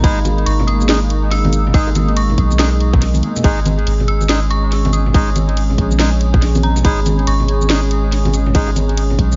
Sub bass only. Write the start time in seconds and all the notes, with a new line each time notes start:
0.46 G#1
1.74 G#1
2.38 B1
3.44 G#1
3.87 G#1
5.14 G#1
5.78 A#1
6.42 A#1
6.85 G#1
7.27 G#1
8.55 G#1
9.19 B1